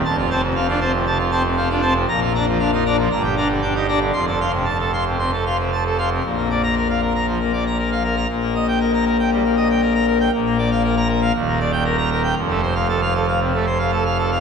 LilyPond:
<<
  \new Staff \with { instrumentName = "Pipe organ" } { \time 4/4 \key bes \major \tempo 4 = 117 << { a''16 f'16 <c'' a''>16 c16 f''16 f'16 <c'' a''>16 c16 a''16 f'16 <c'' a''>16 c16 f''16 f'16 <c'' a''>16 c16 | bes''16 f'16 <d'' bes''>16 f16 f''16 f'16 <d'' bes''>16 f16 bes''16 g'16 <d'' bes''>16 d16 g''16 g'16 <d'' bes''>16 d16 | c'''16 a'16 <f'' c'''>16 c16 a''16 a'16 <f'' c'''>16 c16 c'''16 a'16 <f'' c'''>16 c16 a''16 a'16 <f'' c'''>16 c16 | r8. bes''16 r2. |
r4 r16 bes''16 r2 r8 | r4 r16 bes''16 r4. r16 bes''16 r8 | r8. f''16 r2. | } \\ { f,8 c'16 r16 c'16 d'16 c'16 r16 c16 r16 c'16 r16 c'16 d'16 c'16 r16 | bes,8 d'16 r16 d'16 ees'16 d'16 r16 g,8 d'16 r16 d'16 ees'16 d'16 r16 | f,2 c16 r4. r16 | bes,16 bes16 d''16 r16 bes'16 f''16 bes'16 bes''16 f16 bes16 d''16 bes''16 bes'16 f''16 bes'16 bes''16 |
bes,16 bes16 ees''16 g''16 bes'16 r16 bes'16 g''16 g16 bes16 ees''16 g''16 bes'16 bes''16 bes'16 g''16 | bes,16 bes16 d''16 f''16 bes'16 r16 bes'16 f''16 ees,16 bes16 d''16 g''16 bes'16 r16 bes'16 g''16 | f,16 a16 c''16 r16 a'16 f''16 a'16 f''16 c16 a16 c''16 f''16 a'16 f''16 a'16 f''16 | } >> }
  \new Staff \with { instrumentName = "Pipe organ" } { \clef bass \time 4/4 \key bes \major f,,1 | bes,,2 g,,2 | f,,1 | bes,,1 |
bes,,1 | bes,,2 ees,,2 | f,,1 | }
>>